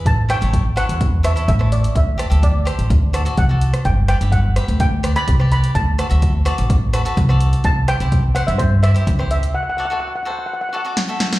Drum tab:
HH |x-xxx-xxx-xxx-xx|x-xxx-xxx-xxx-xx|x-xxx-xxx-xxx-xx|x-xxx-xxx-xxx-xx|
SD |--r---r---r--r--|--r---r---r----r|--r---r---r--r--|--r---r---r--r--|
BD |o---o---o---o---|o---o---o---o---|o---o---o---o---|o---o---o---o---|

HH |x-xxx-xxx-xxx-xx|----------------|
SD |--r---r---r--r--|------------o-oo|
BD |o---o---o---o---|----------------|